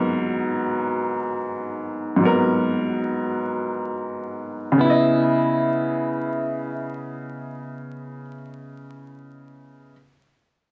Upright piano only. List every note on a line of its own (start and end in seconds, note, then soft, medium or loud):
0.00 2.14 G#2 medium
0.00 2.16 F#3 medium
0.00 2.17 B3 medium
0.00 2.19 A#4 medium
2.16 4.75 G#2 medium
2.16 4.77 F#3 medium
2.22 4.76 B3 medium
2.22 4.80 A#4 loud
4.72 8.22 C#3 medium
4.78 8.28 B3 medium
4.84 8.34 E4 medium
4.90 8.40 D#5 medium